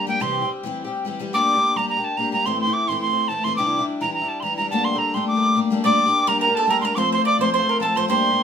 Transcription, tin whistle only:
0.08 G5
0.21 C6
1.34 D6
1.76 A#5
1.89 A#5
2.04 A5
2.17 A#5
2.33 A#5
2.45 C6
2.60 C6
2.73 D6
2.88 C6
3.00 C6
3.28 A5
3.44 C6
3.56 D6
4.01 A#5
4.13 A#5
4.28 A5
4.40 A#5 C6
4.56 A#5
4.70 A5
4.84 C6
4.98 A#5
5.14 C6
5.27 D6
5.85 D6
6.28 A#5
6.40 A#5
6.55 A5
6.68 A#5
6.81 A#5 C6
6.95 C6 D6
7.13 C6
7.25 D6
7.41 C6
7.53 C6
7.81 A5
7.96 C6
8.08 C6

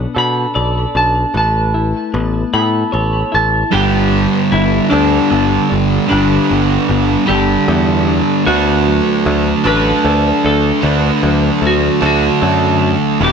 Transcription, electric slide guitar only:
Already playing: F#5
0.18 B5
0.97 A5
1.37 A5
2.54 B5
3.35 A5
3.72 G4
4.52 E4
4.90 D4
6.09 D4
7.28 G4
8.46 F#4
9.67 B4
10.46 A4
11.67 F#4
12.06 F#4
13.24 G4

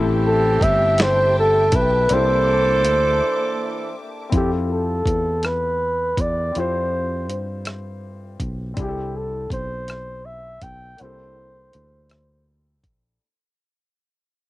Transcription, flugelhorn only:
0.27 A4
0.63 E5
1.02 C5
1.39 A4
1.76 B4
2.13 C5
4.35 G4
4.72 A4
5.46 B4
6.21 D5
6.59 C5
8.79 G4
9.17 A4
9.53 C5
10.26 E5
10.63 G5
11.02 C5

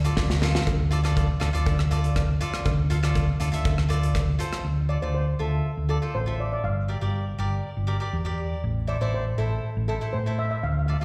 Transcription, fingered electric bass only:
0.17 D2
0.67 D2
1.41 D2
1.54 D2
2.66 D2
3.40 D2
3.53 D2
4.64 D2
5.03 D2
5.40 D2
5.77 D2
6.15 A1
6.63 G1
7.02 G1
7.38 G1
7.77 G1
8.13 E2
8.64 A1
9.01 A1
9.39 A1
9.77 A1
10.14 A2
10.63 D2
11.02 D2

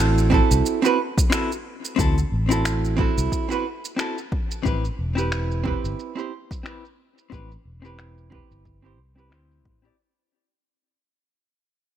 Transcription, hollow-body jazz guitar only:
Already playing: C4 E4 F#4 A4
0.30 C4 E4 F#4 A4
0.82 C4 E4 F#4 B4
1.30 C4 E4 F#4 A4
1.96 C4 E4 F#4
2.00 A4
2.49 C4 E4 F#4 A4
2.97 C4 E4 F#4
3.01 A4
3.49 C4 E4 F#4 B4
3.96 C4 E4 F#4 A4
4.63 C4 E4 G4 B4
5.15 C4 E4 G4
5.19 B4
5.64 C4 E4 G4 B4
6.15 C4 E4 G4 C5
6.63 C4 E4 G4 B4
7.30 C4 E4 G4 B4
7.82 C4 E4 G4 B4
8.30 C4 E4 G4 B4
8.82 C4 E4 G4 C5
9.16 C4 E4 G4 B4
9.30 C4 E4 G4 C5
9.82 C4 E4 G4 D5

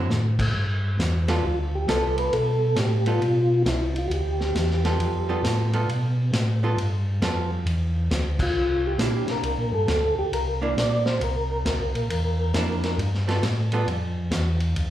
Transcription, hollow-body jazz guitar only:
1.28 G3 B3 F4 A4
1.88 G3 B3 F4 A4
3.06 G3 B3 F4 A4
4.85 G3 B3 F4 A4
5.29 G3 B3 F4 A4
5.73 G3 B3 F4 A4
6.63 G3 B3 F4 A4
7.22 G3 B3 F4 A4
8.99 A#3 D4 E4
10.62 A#3 D4 E4
12.55 A#3 D4 E4
13.27 G3 B3 F4 A4
13.73 G3 B3 F4 A4

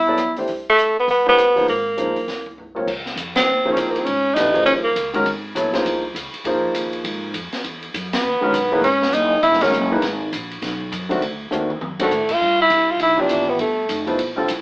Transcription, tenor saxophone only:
Already playing: E4
0.69 A3
0.99 B3
1.10 B3
1.29 B3
1.69 A#3
3.36 C4
3.72 C#4
3.80 C4
3.91 A#3
3.99 C4
4.05 C#4
4.34 D#4
4.65 C#4
4.84 A#3
8.14 B3
8.84 C#4
9.14 D#4
9.42 D#4 E4
9.62 C#4
12.03 A3
12.33 F4
12.62 E4
12.91 F4
13.03 E4
13.21 D4
13.49 B3
13.61 A3

